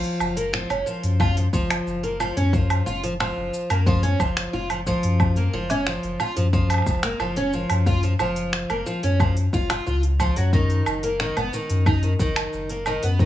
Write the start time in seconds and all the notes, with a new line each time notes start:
Already playing: F3
0.04 open hi-hat
0.20 F#1, cabasa, low woodblock
0.37 A#3, open hi-hat, cabasa
0.53 F3, finger snap, cabasa
0.70 F#1 C#4, open hi-hat, low woodblock
0.86 F3, cabasa
1.03 F#2, open hi-hat, cabasa
1.20 F4, kick, cabasa, low woodblock
1.37 F3, open hi-hat
1.53 F#1 F3, kick, cabasa
1.70 finger snap, open hi-hat, cabasa, low woodblock
1.86 F#1, cabasa
2.03 A#3, open hi-hat
2.20 F3, cabasa, low woodblock
2.36 F#2 C#4, open hi-hat, cabasa
2.53 F3, kick, cabasa
2.70 open hi-hat, low woodblock
2.86 F#1 F4, cabasa
3.03 F3, open hi-hat, cabasa
3.20 F3, finger snap, cabasa, low woodblock
3.37 F#1
3.54 cabasa
3.70 F#2 A#3, open hi-hat, cabasa, low woodblock
3.86 F3, kick, cabasa
4.03 C#4, open hi-hat
4.20 F#1 F3, kick, cabasa, low woodblock
4.37 finger snap, open hi-hat, cabasa
4.53 F#1 F4
4.70 F3, open hi-hat, low woodblock
4.86 F3, kick, cabasa
5.03 F#2, open hi-hat
5.20 kick, cabasa, low woodblock
5.36 A#3, open hi-hat
5.53 F#1 F3
5.70 C#4, open hi-hat, cabasa, low woodblock
5.87 F3, finger snap, cabasa
6.03 F#1, open hi-hat
6.20 F4, cabasa, low woodblock
6.36 F#2 F3, open hi-hat, cabasa
6.53 F3, kick, cabasa
6.70 open hi-hat, low woodblock
6.74 low woodblock
6.78 low woodblock
6.82 low woodblock
6.86 F#1, kick, cabasa, low woodblock
6.91 low woodblock
6.95 low woodblock
6.99 finger snap, open hi-hat, cabasa, low woodblock
7.03 A#3
7.19 F#1 F3, cabasa, low woodblock
7.36 C#4, open hi-hat
7.53 F3, cabasa
7.70 F#2, open hi-hat, cabasa, low woodblock
7.86 F4, kick, cabasa
8.03 F3, open hi-hat
8.19 F#1 F3, cabasa, low woodblock
8.36 open hi-hat, cabasa
8.53 finger snap, cabasa
8.70 F#1 A#3, open hi-hat, low woodblock
8.86 F3, cabasa
9.03 F#2 C#4, open hi-hat, cabasa
9.20 F3, kick, cabasa, low woodblock
9.37 open hi-hat
9.53 F#1 F4, kick, cabasa
9.70 F4, finger snap, open hi-hat, cabasa, low woodblock
9.87 C#2 F4, cabasa
10.03 open hi-hat
10.20 F3, kick, cabasa, low woodblock
10.36 F#2 F#3, open hi-hat, cabasa
10.53 D#3, kick, cabasa
10.70 open hi-hat
10.86 F#1, cabasa, low woodblock
11.03 A#3, open hi-hat, cabasa
11.20 D#3, finger snap, cabasa
11.36 F#1 B3, open hi-hat, low woodblock
11.53 D#3, cabasa
11.70 F#2, open hi-hat, cabasa
11.86 D#4, kick, cabasa, low woodblock
12.03 D#3, open hi-hat
12.19 F#1 D#3, kick, cabasa
12.36 finger snap, open hi-hat, cabasa, low woodblock
12.53 F#1, cabasa
12.69 A#3, open hi-hat
12.86 D#3, cabasa, low woodblock
13.03 F#2 B3, open hi-hat, cabasa
13.19 D#3, kick, cabasa